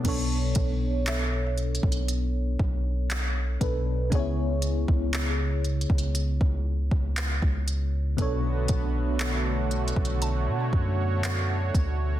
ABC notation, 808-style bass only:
X:1
M:4/4
L:1/16
Q:1/4=59
K:Bdor
V:1 name="808-style bass" clef=bass
B,,,2 B,,,4- B,,, B,,,3 B,,,4 B,,,2 | C,,3 C,,4 C,,2 C,,2 C,,2 C,,3 | B,,,2 B,,,4- B,,, B,,,2 B,, F,,4 D,,2 |]